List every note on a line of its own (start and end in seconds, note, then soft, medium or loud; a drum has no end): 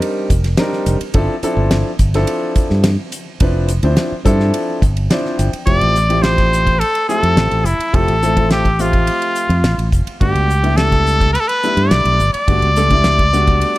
0.00 0.29 G3 medium
0.00 0.29 C4 medium
0.00 0.29 D4 medium
0.00 0.29 D#4 medium
0.00 0.29 A#4 medium
0.00 ride medium
0.30 0.55 F1 medium
0.30 kick medium
0.30 hi-hat pedal medium
0.30 ride medium
0.44 snare soft
0.44 ride medium
0.57 0.95 G3 medium
0.57 0.95 C4 medium
0.57 0.95 D4 medium
0.57 0.95 D#4 medium
0.57 0.96 A#4 medium
0.57 snare loud
0.57 ride medium
0.72 snare soft
0.86 0.99 F1 medium
0.86 hi-hat pedal medium
0.86 ride medium
1.01 ride medium
1.14 1.27 G1 medium
1.14 1.33 F3 medium
1.14 1.33 C4 medium
1.14 1.33 D4 medium
1.14 1.33 E4 medium
1.14 1.33 A4 medium
1.14 kick loud
1.14 ride medium
1.43 1.89 F3 medium
1.43 1.89 C4 medium
1.43 1.89 D4 medium
1.43 1.89 E4 medium
1.43 1.90 A4 medium
1.43 muted fingered electric bass stroke soft
1.43 hi-hat pedal medium
1.43 ride medium
1.57 1.82 G1 loud
1.71 snare loud
1.71 ride medium
1.99 2.24 G1 medium
1.99 kick medium
1.99 hi-hat pedal medium
1.99 ride medium
2.14 2.88 F3 medium
2.14 2.88 C4 medium
2.14 2.88 D4 medium
2.14 2.88 E4 medium
2.14 2.88 A4 medium
2.14 snare soft
2.14 ride medium
2.27 ride medium
2.56 kick medium
2.56 hi-hat pedal medium
2.56 ride medium
2.70 2.96 G2 medium
2.70 snare soft
2.84 snare loud
2.84 ride medium
3.12 hi-hat pedal medium
3.12 ride medium
3.40 3.78 F1 medium
3.40 3.68 F3 medium
3.40 3.68 C4 medium
3.40 3.69 D4 medium
3.40 3.69 E4 medium
3.40 3.69 B4 medium
3.40 kick loud
3.40 ride medium
3.68 hi-hat pedal medium
3.68 ride medium
3.83 3.95 D2 medium
3.83 4.11 F3 medium
3.83 4.11 C4 medium
3.83 4.11 D4 medium
3.83 4.11 E4 medium
3.83 4.11 C5 medium
3.83 ride medium
3.97 snare medium
3.97 ride medium
4.12 muted fingered electric bass stroke soft
4.25 4.50 G2 medium
4.25 4.80 F3 medium
4.25 4.80 C4 medium
4.25 4.80 D4 medium
4.25 4.81 E4 medium
4.25 4.81 A4 loud
4.25 kick medium
4.25 hi-hat pedal medium
4.25 ride medium
4.40 snare soft
4.54 ride medium
4.82 5.07 G1 medium
4.82 kick medium
4.82 hi-hat pedal medium
4.82 ride medium
4.97 ride medium
5.10 5.47 F3 medium
5.10 5.47 C4 medium
5.10 5.47 D4 medium
5.10 5.48 E4 medium
5.10 5.48 C5 medium
5.10 5.37 D5 medium
5.10 snare loud
5.10 ride medium
5.26 snare soft
5.38 5.51 G1 medium
5.38 5.65 G5 medium
5.38 hi-hat pedal medium
5.38 ride medium
5.53 muted fingered electric bass stroke soft
5.53 ride medium
5.66 5.80 F1 medium
5.66 5.94 F3 medium
5.66 5.94 A3 medium
5.66 5.94 C4 medium
5.66 5.94 E4 medium
5.66 5.94 G4 medium
5.66 6.24 D5 medium
5.66 kick medium
5.66 ride medium
5.81 6.82 A1 medium
5.81 ride medium
5.95 snare soft
5.95 hi-hat pedal medium
6.09 6.74 F3 medium
6.09 6.74 A3 medium
6.09 6.74 C4 medium
6.09 6.74 E4 medium
6.09 6.74 G4 medium
6.09 ride medium
6.22 6.81 C5 medium
6.22 snare loud
6.22 ride medium
6.38 kick medium
6.38 snare soft
6.38 ride medium
6.53 hi-hat pedal medium
6.67 kick medium
6.67 ride medium
6.79 7.08 A4 medium
6.79 ride medium
6.95 ride medium
7.09 7.64 F3 medium
7.09 7.64 A3 medium
7.09 7.64 C4 medium
7.09 7.64 E4 medium
7.09 7.64 G4 medium
7.09 7.67 A4 medium
7.09 hi-hat pedal medium
7.23 7.35 F2 medium
7.23 ride medium
7.37 7.49 A1 medium
7.37 snare loud
7.37 ride medium
7.51 7.64 A1 medium
7.51 ride medium
7.64 7.77 F1 medium
7.64 7.97 E4 medium
7.64 hi-hat pedal medium
7.79 muted fingered electric bass stroke soft
7.79 ride medium
7.93 8.06 F1 medium
7.93 8.12 F3 medium
7.93 8.12 A3 medium
7.93 8.12 C4 medium
7.93 8.12 E4 medium
7.93 8.12 G4 medium
7.93 8.51 A4 medium
7.93 kick medium
7.93 ride medium
8.08 9.08 A1 medium
8.08 ride medium
8.22 8.32 F3 medium
8.22 8.32 A3 medium
8.22 8.32 C4 medium
8.22 8.32 E4 medium
8.22 8.32 A4 medium
8.22 snare soft
8.22 hi-hat pedal medium
8.36 8.64 F3 medium
8.36 8.64 A3 medium
8.36 8.64 C4 medium
8.36 8.64 E4 medium
8.36 8.65 A4 medium
8.36 kick medium
8.36 ride medium
8.50 8.83 G4 medium
8.50 snare medium
8.50 ride medium
8.65 kick medium
8.65 ride soft
8.79 9.53 F3 medium
8.79 9.53 A3 medium
8.79 9.53 C4 medium
8.79 9.93 F4 medium
8.79 9.53 G4 medium
8.79 9.53 E5 medium
8.79 hi-hat pedal medium
8.93 kick medium
8.93 ride medium
9.07 ride medium
9.22 ride medium
9.35 hi-hat pedal medium
9.49 9.62 F2 medium
9.49 ride soft
9.64 9.76 A1 medium
9.64 snare medium
9.64 ride medium
9.78 9.91 A1 medium
9.78 ride medium
9.92 10.05 F1 medium
9.92 kick medium
9.92 hi-hat pedal medium
10.07 muted fingered electric bass stroke soft
10.07 ride medium
10.20 10.34 G1 medium
10.20 10.48 G3 medium
10.20 10.48 A3 medium
10.20 10.49 B3 medium
10.20 10.49 D4 medium
10.20 10.49 F#4 medium
10.20 10.78 G4 medium
10.20 kick medium
10.20 ride medium
10.35 11.35 C#2 medium
10.35 ride medium
10.50 hi-hat pedal medium
10.63 11.28 G3 medium
10.63 11.28 A3 medium
10.63 11.28 B3 medium
10.63 11.28 D4 medium
10.63 11.28 E4 medium
10.63 ride medium
10.77 11.32 A4 medium
10.77 snare loud
10.77 ride medium
10.92 kick medium
10.92 snare soft
10.92 ride medium
11.06 hi-hat pedal medium
11.21 kick medium
11.21 snare soft
11.21 ride soft
11.33 11.42 B4 medium
11.33 ride medium
11.40 11.50 A4 medium
11.48 11.91 B4 medium
11.48 ride medium
11.63 12.19 G3 medium
11.63 12.19 A3 medium
11.63 12.19 B3 medium
11.63 12.19 D4 medium
11.63 12.19 E4 medium
11.63 hi-hat pedal medium
11.77 11.89 G2 medium
11.77 ride medium
11.90 12.04 B1 medium
11.90 12.32 D5 medium
11.90 snare medium
11.90 ride medium
12.05 12.18 B1 medium
12.05 ride medium
12.19 12.32 G1 medium
12.19 hi-hat pedal medium
12.33 13.78 D5 medium
12.33 muted fingered electric bass stroke soft
12.33 ride medium
12.48 12.61 G1 medium
12.48 12.66 G3 medium
12.48 12.66 A3 medium
12.48 12.67 B3 medium
12.48 12.67 D4 medium
12.48 12.67 F#4 medium
12.48 kick loud
12.48 ride medium
12.62 13.63 C#2 medium
12.62 ride medium
12.76 12.86 G3 medium
12.76 12.86 A3 medium
12.76 12.86 B3 medium
12.76 12.86 D4 medium
12.76 12.86 A4 medium
12.76 snare soft
12.76 hi-hat pedal medium
12.90 13.18 G3 medium
12.90 13.19 A3 medium
12.90 13.19 B3 medium
12.90 13.19 D4 medium
12.90 13.19 E4 medium
12.90 kick medium
12.90 ride medium
13.04 snare medium
13.04 ride medium
13.19 kick medium
13.19 ride medium
13.33 13.78 G3 medium
13.33 13.78 A3 medium
13.33 13.78 B3 medium
13.33 13.78 D4 medium
13.33 13.78 F#4 medium
13.33 hi-hat pedal medium
13.47 kick medium
13.47 ride soft
13.61 ride medium